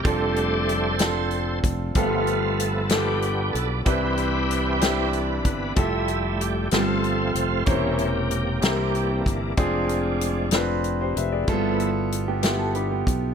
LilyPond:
<<
  \new Staff \with { instrumentName = "Clean electric guitar" } { \time 6/8 \key c \major \tempo 4. = 63 r2. | r2. | r2. | r2. |
r2. | r2. | r4 r16 <b g'>8 a'16 <d' b'>16 <b g'>8. | }
  \new Staff \with { instrumentName = "Grand piano" } { \time 6/8 \key c \major << { r2. | r2. | r2. | r2. |
r2. | r2 r16 <g' c''>16 <b' e''>16 <aes' d''>16~ | <aes' d''>16 r2 r8. | } \\ { <c' d' f' a'>4. <c' d' f' a'>4. | <g, b f' g' a'>4. <b f' g' a'>4. | <c c' d' e' b'>4. <c' d' e' g'>4. | <e' f' g' a'>4. <g, b c' f' g' a'>4. |
<e des' e' bes' c''>4. <c c' e' g' bes'>4. | <c' d' f' aes'>4. <c' d' f' b'>4. | <g, a b e' f' a'>4. <b e' f' g'>4. | } >> }
  \new Staff \with { instrumentName = "Tonewheel organ" } { \time 6/8 \key c \major << { c''2~ c''8 r8 | f'4 a'8 g'4 a'8 | g'2 r4 | e'4 g'8 a'4 r8 |
g'2~ g'8 r8 | r2. | r2. | } \\ { a'2~ a'8 r8 | <a b>4. d'4. | <c' e'>2 r4 | r4. <c' f'>4. |
c2~ c8 r8 | r2. | r2. | } >> }
  \new Staff \with { instrumentName = "Tonewheel organ" } { \time 6/8 \key c \major <g a d'>4. r4. | f4. <f a b>8 r4 | <e d' b'>2~ <e d' b'>8 <e b d'>8 | <g a e''>8 r4 <f a>4. |
<e bes des'>8 r4 <e bes d'>4. | <f aes d'>4. r4. | <f a b e''>8 r2 r8 | }
  \new Staff \with { instrumentName = "Fingered electric bass" } { \clef bass \time 6/8 \key c \major f,,2~ f,,8 f,,8 | g,,2~ g,,8 b,,8 | c,2~ c,8 g,,8 | f,,4. g,,4 f,,8 |
e,,4. c,4 g,,8 | f,,2~ f,,8 f,,8 | g,,2~ g,,8 b,,8 | }
  \new DrumStaff \with { instrumentName = "Drums" } \drummode { \time 6/8 <hh bd>8 hh8 hh8 <hh sn>8 hh8 <hh bd>8 | <hh bd>8 hh8 hh8 <hh sn>8 hh8 hh8 | <hh bd>8 hh8 hh8 <hh sn>8 hh8 <hh bd>8 | <hh bd>8 hh8 hh8 <hh sn>8 hh8 hh8 |
<hh bd>8 hh8 hh8 <hh sn>8 hh8 <hh bd>8 | <hh bd>8 hh8 hh8 <hh sn>8 hh8 hh8 | <hh bd>8 hh8 hh8 <hh sn>8 hh8 <hh bd>8 | }
>>